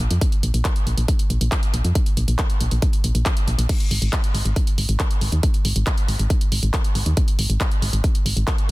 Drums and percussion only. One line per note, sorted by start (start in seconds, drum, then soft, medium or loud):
0.11 closed hi-hat soft
0.21 kick loud
0.21 closed hi-hat medium
0.32 closed hi-hat soft
0.43 closed hi-hat medium
0.54 closed hi-hat soft
0.65 kick loud
0.65 clap loud
0.65 closed hi-hat medium
0.76 closed hi-hat soft
0.87 closed hi-hat medium
0.98 closed hi-hat soft
1.08 kick loud
1.08 closed hi-hat medium
1.19 closed hi-hat medium
1.30 closed hi-hat medium
1.41 closed hi-hat medium
1.52 kick loud
1.52 clap loud
1.52 closed hi-hat medium
1.63 closed hi-hat medium
1.74 closed hi-hat medium
1.85 closed hi-hat soft
1.95 kick loud
1.95 closed hi-hat medium
2.06 closed hi-hat medium
2.17 closed hi-hat medium
2.28 closed hi-hat soft
2.39 kick loud
2.39 clap loud
2.39 closed hi-hat medium
2.50 closed hi-hat medium
2.61 closed hi-hat medium
2.71 closed hi-hat soft
2.82 kick loud
2.82 closed hi-hat medium
2.93 closed hi-hat medium
3.04 closed hi-hat medium
3.15 closed hi-hat medium
3.26 kick loud
3.26 clap loud
3.26 closed hi-hat medium
3.37 closed hi-hat medium
3.48 closed hi-hat medium
3.59 closed hi-hat medium
3.69 kick loud
3.69 closed hi-hat medium
3.69 crash medium
3.80 closed hi-hat medium
3.91 open hi-hat loud
4.02 closed hi-hat medium
4.13 kick loud
4.13 clap loud
4.13 closed hi-hat medium
4.24 closed hi-hat soft
4.35 open hi-hat medium
4.45 closed hi-hat medium
4.56 kick loud
4.56 closed hi-hat medium
4.67 closed hi-hat medium
4.78 open hi-hat loud
4.89 closed hi-hat medium
5.00 kick loud
5.00 clap loud
5.00 closed hi-hat medium
5.11 closed hi-hat soft
5.21 open hi-hat medium
5.32 closed hi-hat soft
5.43 kick loud
5.43 closed hi-hat medium
5.54 closed hi-hat soft
5.65 open hi-hat loud
5.76 closed hi-hat medium
5.87 kick loud
5.87 clap loud
5.87 closed hi-hat medium
5.98 closed hi-hat soft
6.08 open hi-hat medium
6.19 closed hi-hat medium
6.30 kick loud
6.30 closed hi-hat medium
6.41 closed hi-hat medium
6.52 open hi-hat loud
6.63 closed hi-hat medium
6.74 kick loud
6.74 clap loud
6.74 closed hi-hat medium
6.84 closed hi-hat soft
6.95 open hi-hat medium
7.06 closed hi-hat medium
7.17 kick loud
7.17 closed hi-hat medium
7.28 closed hi-hat soft
7.39 open hi-hat loud
7.50 closed hi-hat medium
7.61 kick loud
7.61 clap loud
7.61 closed hi-hat medium
7.71 closed hi-hat soft
7.82 open hi-hat medium
7.93 closed hi-hat soft
8.04 kick loud
8.04 closed hi-hat medium
8.15 closed hi-hat medium
8.26 open hi-hat loud
8.37 closed hi-hat medium
8.47 kick loud
8.47 clap loud
8.47 closed hi-hat medium
8.58 closed hi-hat soft